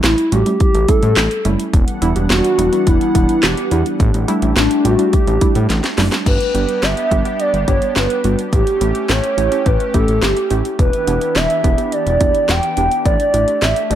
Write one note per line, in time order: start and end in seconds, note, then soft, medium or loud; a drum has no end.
0.00 0.15 A1 loud
0.00 0.14 G3 medium
0.00 0.14 A3 medium
0.00 0.14 C#4 medium
0.00 0.14 E4 medium
0.00 0.33 E4 medium
0.00 snare loud
0.00 closed hi-hat medium
0.18 closed hi-hat medium
0.32 0.44 A1 loud
0.32 0.44 G3 medium
0.32 0.44 A3 medium
0.32 0.44 C#4 medium
0.32 0.44 F#4 medium
0.32 0.60 G4 medium
0.32 closed hi-hat medium
0.46 0.71 G3 medium
0.46 0.71 A3 medium
0.46 0.71 C#4 medium
0.46 0.71 E4 medium
0.46 closed hi-hat medium
0.60 0.90 G4 loud
0.60 kick loud
0.60 closed hi-hat medium
0.74 0.86 A1 loud
0.74 closed hi-hat soft
0.88 1.13 G3 medium
0.88 1.13 A3 medium
0.88 1.13 C#4 medium
0.88 1.13 E4 medium
0.88 1.45 A4 loud
0.88 kick loud
0.88 closed hi-hat medium
1.03 1.14 A2 medium
1.03 closed hi-hat medium
1.17 1.29 A1 loud
1.17 snare loud
1.17 clap medium
1.17 closed hi-hat medium
1.31 closed hi-hat soft
1.45 1.57 F#1 medium
1.45 1.70 G3 medium
1.45 1.70 A3 medium
1.45 1.70 C#4 medium
1.45 1.70 E4 medium
1.45 closed hi-hat medium
1.60 closed hi-hat medium
1.74 1.85 E1 loud
1.74 3.98 E3 medium
1.74 3.98 G3 medium
1.74 3.98 B3 medium
1.74 3.98 D4 medium
1.74 3.98 F#5 medium
1.74 kick loud
1.74 closed hi-hat medium
1.88 closed hi-hat medium
2.02 2.13 E1 loud
2.02 2.14 G3 medium
2.02 2.14 B3 medium
2.02 2.14 D4 medium
2.02 2.14 E4 loud
2.02 closed hi-hat medium
2.16 2.28 E1 loud
2.16 2.40 G3 medium
2.16 2.40 B3 medium
2.16 2.40 D4 medium
2.16 2.40 G4 medium
2.16 closed hi-hat soft
2.30 2.42 E1 loud
2.30 2.88 F#4 loud
2.30 snare loud
2.30 closed hi-hat medium
2.44 closed hi-hat medium
2.58 2.70 E1 loud
2.58 2.71 G3 medium
2.58 2.71 B3 medium
2.58 2.71 D4 medium
2.58 2.71 E4 medium
2.58 closed hi-hat medium
2.73 2.97 G3 medium
2.73 2.97 B3 medium
2.73 2.97 D4 medium
2.73 2.97 E4 medium
2.73 closed hi-hat medium
2.87 2.99 E1 loud
2.87 3.45 E4 loud
2.87 kick loud
2.87 closed hi-hat medium
3.01 closed hi-hat soft
3.15 3.27 E1 medium
3.15 3.39 G3 medium
3.15 3.39 B3 medium
3.15 3.39 D4 medium
3.15 3.39 E4 medium
3.15 kick medium
3.15 closed hi-hat medium
3.29 closed hi-hat medium
3.43 3.55 E1 loud
3.43 3.86 G4 loud
3.43 snare loud
3.43 clap medium
3.43 closed hi-hat medium
3.57 closed hi-hat medium
3.71 3.83 E2 loud
3.71 3.96 G3 medium
3.71 3.96 B3 medium
3.71 3.96 D4 medium
3.71 3.96 E4 medium
3.71 closed hi-hat medium
3.86 closed hi-hat medium
4.00 4.12 A1 loud
4.00 6.24 A3 medium
4.00 6.24 D4 medium
4.00 6.24 G4 medium
4.00 kick loud
4.00 closed hi-hat medium
4.14 4.26 A1 medium
4.14 closed hi-hat medium
4.28 4.40 G3 medium
4.28 4.40 A3 medium
4.28 4.40 D4 medium
4.28 4.40 E4 loud
4.28 closed hi-hat medium
4.42 4.54 A1 loud
4.42 4.67 G3 medium
4.42 4.67 A3 medium
4.42 4.67 D4 medium
4.42 4.67 E4 medium
4.42 closed hi-hat medium
4.57 4.68 A1 loud
4.57 4.86 D4 medium
4.57 snare loud
4.57 closed hi-hat medium
4.71 closed hi-hat medium
4.85 4.96 A1 loud
4.85 4.97 G3 medium
4.85 4.97 A3 medium
4.85 4.97 D4 medium
4.85 5.15 F#4 loud
4.85 4.97 G4 medium
4.85 closed hi-hat medium
4.99 5.23 G3 medium
4.99 5.23 A3 medium
4.99 5.23 D4 medium
4.99 5.23 E4 medium
4.99 closed hi-hat medium
5.13 5.70 G4 loud
5.13 kick loud
5.13 closed hi-hat medium
5.27 5.39 A1 loud
5.27 closed hi-hat soft
5.41 5.66 G3 medium
5.41 5.66 A3 medium
5.41 5.66 D4 medium
5.41 5.66 E4 medium
5.41 kick medium
5.41 closed hi-hat medium
5.55 5.67 A2 loud
5.55 closed hi-hat medium
5.70 5.81 A1 loud
5.70 snare medium
5.70 closed hi-hat medium
5.84 snare medium
5.84 closed hi-hat medium
5.98 6.10 F#1 loud
5.98 6.22 G3 medium
5.98 6.22 A3 medium
5.98 6.22 D4 medium
5.98 6.22 E4 loud
5.98 snare medium
5.98 open hi-hat medium
6.12 snare loud
6.12 closed hi-hat medium
6.26 6.38 G1 loud
6.26 8.51 B3 medium
6.26 8.51 D4 medium
6.26 8.51 G4 medium
6.26 6.85 B4 loud
6.26 kick loud
6.26 closed hi-hat medium
6.26 crash medium
6.41 closed hi-hat medium
6.55 6.66 G1 medium
6.55 6.79 G3 medium
6.55 6.79 B3 medium
6.55 6.79 D4 medium
6.55 6.79 G4 medium
6.55 closed hi-hat medium
6.69 closed hi-hat soft
6.83 6.95 G1 loud
6.83 7.41 E5 loud
6.83 snare loud
6.83 closed hi-hat medium
6.97 closed hi-hat soft
7.11 7.23 G1 loud
7.11 7.23 G3 medium
7.11 7.23 B3 medium
7.11 7.23 D4 medium
7.11 7.23 G4 medium
7.11 kick medium
7.11 closed hi-hat medium
7.25 7.50 G3 medium
7.25 7.50 B3 medium
7.25 7.50 D4 medium
7.25 7.50 G4 medium
7.25 closed hi-hat medium
7.40 7.67 D5 medium
7.40 closed hi-hat medium
7.54 7.65 G1 medium
7.54 closed hi-hat soft
7.68 7.80 G1 medium
7.68 7.92 G3 medium
7.68 7.92 B3 medium
7.68 7.92 D4 medium
7.68 7.92 G4 medium
7.68 7.98 C#5 medium
7.68 kick medium
7.68 closed hi-hat medium
7.82 closed hi-hat medium
7.96 8.08 G1 loud
7.96 8.39 B4 medium
7.96 snare loud
7.96 closed hi-hat medium
8.10 closed hi-hat soft
8.24 8.36 G1 medium
8.24 8.49 G3 medium
8.24 8.49 B3 medium
8.24 8.49 D4 medium
8.24 8.49 F#4 medium
8.24 closed hi-hat medium
8.39 closed hi-hat medium
8.53 8.64 A1 loud
8.53 10.77 A3 medium
8.53 10.77 C#4 medium
8.53 9.11 G4 loud
8.53 10.77 G4 medium
8.53 kick loud
8.53 closed hi-hat medium
8.67 closed hi-hat medium
8.81 8.93 A1 loud
8.81 9.05 A3 medium
8.81 9.05 C#4 medium
8.81 9.05 E4 medium
8.81 9.05 G4 medium
8.81 closed hi-hat medium
8.95 closed hi-hat soft
9.09 9.21 A1 medium
9.09 9.67 C#5 loud
9.09 snare loud
9.09 closed hi-hat medium
9.24 closed hi-hat medium
9.38 9.49 A1 loud
9.38 9.50 A3 medium
9.38 9.50 C#4 medium
9.38 9.50 E4 medium
9.38 9.50 G4 medium
9.38 closed hi-hat medium
9.52 9.76 A3 medium
9.52 9.76 C#4 medium
9.52 9.76 E4 medium
9.52 9.76 G4 medium
9.52 closed hi-hat medium
9.66 9.78 A1 loud
9.66 9.94 B4 loud
9.66 kick medium
9.66 closed hi-hat medium
9.80 closed hi-hat soft
9.94 10.06 A1 loud
9.94 10.19 A3 medium
9.94 10.19 C#4 medium
9.94 10.19 E4 medium
9.94 10.19 G4 medium
9.94 10.24 A4 medium
9.94 kick medium
9.94 closed hi-hat medium
10.08 10.20 A1 medium
10.08 closed hi-hat medium
10.22 10.34 G1 medium
10.22 10.65 G4 medium
10.22 snare loud
10.22 closed hi-hat medium
10.37 closed hi-hat soft
10.51 10.62 A1 medium
10.51 10.75 A3 medium
10.51 10.75 C#4 medium
10.51 10.75 E4 medium
10.51 10.75 G4 medium
10.51 closed hi-hat medium
10.65 closed hi-hat medium
10.79 10.91 E1 loud
10.79 13.03 E3 medium
10.79 13.03 B3 medium
10.79 13.95 D4 medium
10.79 13.03 E4 medium
10.79 13.95 G4 medium
10.79 11.37 B4 loud
10.79 kick loud
10.79 closed hi-hat medium
10.93 closed hi-hat medium
11.07 11.19 E1 loud
11.07 11.32 B3 medium
11.07 11.32 D4 medium
11.07 11.32 E4 medium
11.07 11.32 G4 medium
11.07 closed hi-hat medium
11.21 closed hi-hat soft
11.36 11.47 E1 loud
11.36 11.94 E5 loud
11.36 snare loud
11.36 closed hi-hat medium
11.50 closed hi-hat medium
11.64 11.76 E1 loud
11.64 11.76 B3 medium
11.64 11.76 D4 medium
11.64 11.76 E4 medium
11.64 11.76 G4 medium
11.64 kick loud
11.64 closed hi-hat medium
11.78 12.03 B3 medium
11.78 12.03 D4 medium
11.78 12.03 E4 medium
11.78 12.03 G4 medium
11.78 closed hi-hat medium
11.92 12.50 D5 loud
11.92 closed hi-hat medium
12.07 12.18 E1 loud
12.07 closed hi-hat soft
12.21 12.32 E1 medium
12.21 12.45 B3 medium
12.21 12.45 D4 medium
12.21 12.45 E4 medium
12.21 12.45 G4 medium
12.21 kick medium
12.21 closed hi-hat medium
12.35 closed hi-hat medium
12.49 12.61 E1 loud
12.49 13.05 G5 loud
12.49 snare loud
12.49 closed hi-hat medium
12.63 closed hi-hat soft
12.77 12.89 E1 loud
12.77 13.02 B3 medium
12.77 13.02 D4 medium
12.77 13.02 E4 medium
12.77 13.02 G4 medium
12.77 closed hi-hat medium
12.91 closed hi-hat soft
13.06 13.17 A1 loud
13.06 13.95 A3 medium
13.06 13.64 D5 loud
13.06 kick loud
13.06 closed hi-hat medium
13.20 closed hi-hat medium
13.34 13.46 A1 loud
13.34 13.58 A3 medium
13.34 13.58 D4 medium
13.34 13.58 E4 medium
13.34 13.58 G4 medium
13.34 closed hi-hat medium
13.48 closed hi-hat soft
13.62 13.74 A1 medium
13.62 13.92 E5 loud
13.62 snare loud
13.62 closed hi-hat medium
13.76 closed hi-hat medium
13.90 13.95 A1 loud
13.90 13.95 A3 medium
13.90 13.95 D4 medium
13.90 13.95 E4 medium
13.90 13.95 G4 medium
13.90 13.95 D5 loud
13.90 closed hi-hat medium